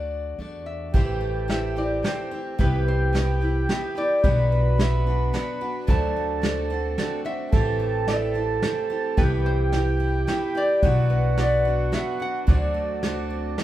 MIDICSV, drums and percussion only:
0, 0, Header, 1, 2, 480
1, 0, Start_track
1, 0, Key_signature, 1, "major"
1, 0, Tempo, 549954
1, 820, Time_signature, 3, 2, 24, 8
1, 11902, End_track
2, 0, Start_track
2, 0, Title_t, "Drums"
2, 823, Note_on_c, 9, 36, 91
2, 823, Note_on_c, 9, 42, 49
2, 910, Note_off_c, 9, 36, 0
2, 910, Note_off_c, 9, 42, 0
2, 1305, Note_on_c, 9, 38, 70
2, 1305, Note_on_c, 9, 42, 50
2, 1392, Note_off_c, 9, 38, 0
2, 1392, Note_off_c, 9, 42, 0
2, 1783, Note_on_c, 9, 38, 69
2, 1783, Note_on_c, 9, 42, 50
2, 1870, Note_off_c, 9, 38, 0
2, 1870, Note_off_c, 9, 42, 0
2, 2263, Note_on_c, 9, 36, 84
2, 2264, Note_on_c, 9, 42, 50
2, 2350, Note_off_c, 9, 36, 0
2, 2351, Note_off_c, 9, 42, 0
2, 2747, Note_on_c, 9, 38, 72
2, 2747, Note_on_c, 9, 42, 50
2, 2834, Note_off_c, 9, 38, 0
2, 2834, Note_off_c, 9, 42, 0
2, 3222, Note_on_c, 9, 38, 74
2, 3222, Note_on_c, 9, 42, 55
2, 3310, Note_off_c, 9, 38, 0
2, 3310, Note_off_c, 9, 42, 0
2, 3696, Note_on_c, 9, 42, 55
2, 3700, Note_on_c, 9, 36, 94
2, 3784, Note_off_c, 9, 42, 0
2, 3788, Note_off_c, 9, 36, 0
2, 4183, Note_on_c, 9, 38, 71
2, 4183, Note_on_c, 9, 42, 60
2, 4270, Note_off_c, 9, 38, 0
2, 4270, Note_off_c, 9, 42, 0
2, 4658, Note_on_c, 9, 38, 70
2, 4658, Note_on_c, 9, 42, 59
2, 4745, Note_off_c, 9, 38, 0
2, 4745, Note_off_c, 9, 42, 0
2, 5135, Note_on_c, 9, 42, 51
2, 5136, Note_on_c, 9, 36, 86
2, 5222, Note_off_c, 9, 42, 0
2, 5223, Note_off_c, 9, 36, 0
2, 5613, Note_on_c, 9, 38, 72
2, 5613, Note_on_c, 9, 42, 47
2, 5701, Note_off_c, 9, 38, 0
2, 5701, Note_off_c, 9, 42, 0
2, 6091, Note_on_c, 9, 38, 70
2, 6091, Note_on_c, 9, 42, 51
2, 6178, Note_off_c, 9, 38, 0
2, 6178, Note_off_c, 9, 42, 0
2, 6569, Note_on_c, 9, 42, 49
2, 6571, Note_on_c, 9, 36, 89
2, 6656, Note_off_c, 9, 42, 0
2, 6658, Note_off_c, 9, 36, 0
2, 7048, Note_on_c, 9, 38, 73
2, 7048, Note_on_c, 9, 42, 51
2, 7135, Note_off_c, 9, 38, 0
2, 7135, Note_off_c, 9, 42, 0
2, 7527, Note_on_c, 9, 38, 73
2, 7527, Note_on_c, 9, 42, 56
2, 7614, Note_off_c, 9, 38, 0
2, 7614, Note_off_c, 9, 42, 0
2, 8008, Note_on_c, 9, 42, 50
2, 8009, Note_on_c, 9, 36, 93
2, 8096, Note_off_c, 9, 42, 0
2, 8097, Note_off_c, 9, 36, 0
2, 8488, Note_on_c, 9, 38, 72
2, 8488, Note_on_c, 9, 42, 55
2, 8575, Note_off_c, 9, 38, 0
2, 8575, Note_off_c, 9, 42, 0
2, 8971, Note_on_c, 9, 38, 80
2, 8971, Note_on_c, 9, 42, 54
2, 9058, Note_off_c, 9, 38, 0
2, 9058, Note_off_c, 9, 42, 0
2, 9447, Note_on_c, 9, 42, 54
2, 9450, Note_on_c, 9, 36, 93
2, 9535, Note_off_c, 9, 42, 0
2, 9537, Note_off_c, 9, 36, 0
2, 9928, Note_on_c, 9, 38, 77
2, 9928, Note_on_c, 9, 42, 50
2, 10016, Note_off_c, 9, 38, 0
2, 10016, Note_off_c, 9, 42, 0
2, 10409, Note_on_c, 9, 38, 77
2, 10409, Note_on_c, 9, 42, 53
2, 10496, Note_off_c, 9, 38, 0
2, 10496, Note_off_c, 9, 42, 0
2, 10890, Note_on_c, 9, 42, 50
2, 10892, Note_on_c, 9, 36, 95
2, 10977, Note_off_c, 9, 42, 0
2, 10979, Note_off_c, 9, 36, 0
2, 11370, Note_on_c, 9, 38, 71
2, 11370, Note_on_c, 9, 42, 54
2, 11457, Note_off_c, 9, 38, 0
2, 11457, Note_off_c, 9, 42, 0
2, 11852, Note_on_c, 9, 38, 69
2, 11852, Note_on_c, 9, 42, 53
2, 11902, Note_off_c, 9, 38, 0
2, 11902, Note_off_c, 9, 42, 0
2, 11902, End_track
0, 0, End_of_file